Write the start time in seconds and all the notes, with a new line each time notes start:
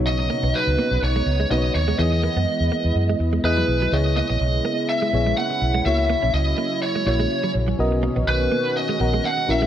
Already playing: B1 B2 C#3 F#3 B3 D#4 F#4 C#5
0.07 D#5
0.19 muted clean electric guitar stroke
0.30 A#3
0.43 B1 B3
0.55 B4
0.67 C#2
0.79 A#3
0.91 B1
1.02 B1 C#5
1.16 G#3
1.26 C#2, muted clean electric guitar stroke
1.40 G#3
1.51 B1 A#3 B3 D#4 F#4 B4 D#5
1.58 C#5
1.64 muted clean electric guitar stroke
1.75 D#2 C#5
1.88 G#3
1.99 E2 E3 G#3 B3 E4 G#4 D#5
2.13 muted clean electric guitar stroke
2.24 A#3
2.36 F#2 B3
2.60 E2
2.72 A#3
2.85 E2
2.95 F#2
3.10 G#3
3.20 E2, muted clean electric guitar stroke
3.33 G#3
3.44 E2 B3 E4 G#4 B4 D#5
3.57 F#3
3.68 B1, muted clean electric guitar stroke
3.82 F#3
3.92 C#2 C#3 G#3 B3 E4 G#4 C#5 D#5
4.06 muted clean electric guitar stroke
4.17 A#3 D#5
4.30 A#1 B3
4.41 B1
4.65 A#3
4.89 E5
5.02 G#3
5.13 A#1 B3 E4 G#4 C#5, muted clean electric guitar stroke
5.26 G#3
5.37 A#3 F#5
5.50 muted clean electric guitar stroke
5.62 B1
5.75 G#3
5.85 C#2 C#3 F#3 A#3 C#4 E4 F#4 C#5 E5
5.99 muted clean electric guitar stroke
6.10 A#3
6.22 A#1 C#4
6.34 C#2 D#5
6.58 A#3
6.82 C#5
6.95 G#3
7.06 A#1 A#3 E4 F#4 C#5, muted clean electric guitar stroke
7.20 G#3
7.44 F#3
7.54 A#1, muted clean electric guitar stroke
7.68 F#3
7.79 B1 B2 D#3 B3 F#4 A#4 D#5
7.92 muted clean electric guitar stroke
8.03 A#3
8.16 A#1 B3
8.27 B1 B4
8.52 A#3
8.77 D#5
8.89 G#3
9.00 A#1 B3 F#4 A#4 F#5, muted clean electric guitar stroke
9.14 G#3
9.24 A#3 F#5
9.38 muted clean electric guitar stroke
9.48 A#1 A#2 C#3 F#3 C#4 E4 F#4 A#4 E5
9.62 G#3